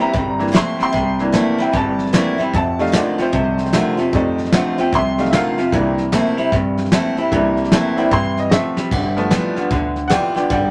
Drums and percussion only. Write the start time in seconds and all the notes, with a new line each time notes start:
0.00 snare
0.14 kick, snare
0.40 snare
0.47 snare
0.55 snare, hi-hat pedal
0.80 snare
0.94 kick, snare
1.19 snare
1.34 snare, hi-hat pedal
1.59 snare
1.73 kick, snare
1.99 snare
2.06 snare
2.14 snare, hi-hat pedal
2.39 snare
2.54 kick, snare
2.79 snare
2.86 snare
2.93 snare, hi-hat pedal
3.19 snare
3.33 kick, snare
3.58 snare
3.66 snare
3.73 snare, hi-hat pedal
3.98 snare
4.13 kick, snare
4.38 snare
4.45 snare
4.52 snare, hi-hat pedal
4.78 snare
4.92 kick, snare
5.18 snare
5.25 snare
5.33 snare, hi-hat pedal
5.58 snare
5.72 kick, snare
5.98 snare
6.13 snare, hi-hat pedal
6.38 snare
6.52 kick, snare
6.77 snare
6.85 snare
6.92 snare, hi-hat pedal
7.17 snare
7.32 kick, snare
7.57 snare
7.64 snare
7.72 snare, hi-hat pedal
7.97 snare
8.11 kick, snare
8.37 snare
8.51 snare, hi-hat pedal
8.77 snare
8.91 kick, snare, crash
9.17 snare
9.31 snare, hi-hat pedal
9.56 snare
9.71 kick, snare
9.96 snare
10.10 snare, hi-hat pedal
10.36 snare
10.50 kick, snare